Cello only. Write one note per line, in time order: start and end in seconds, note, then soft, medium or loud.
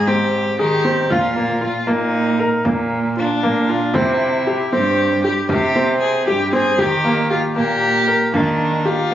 0.00 0.43 G#2 medium
0.59 1.00 D#3 medium
1.10 1.72 A#2 medium
1.88 2.50 A#2 medium
2.65 3.28 A#2 medium
3.43 3.85 A#2 medium
3.95 4.57 C3 medium
4.73 5.35 G2 medium
5.50 6.12 C3 medium
6.27 6.69 G2 medium
6.79 7.41 D#3 medium
7.56 8.18 A#2 medium
8.34 8.96 D#3 medium